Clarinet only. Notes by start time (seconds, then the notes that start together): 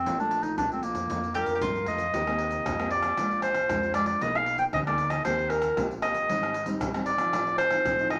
Already playing: C4
0.20 D4
0.43 D#4
0.58 D4
0.72 C4
0.83 A#3
1.35 A#4
1.88 D#5
2.91 D5
3.43 C5
3.94 D5
4.07 D5
4.22 D#5
4.36 F5
4.59 G5
4.74 D#5
4.87 D5
5.10 D#5
5.25 C5
5.50 A#4
6.03 D#5
7.06 D5
7.58 C5
8.11 D#5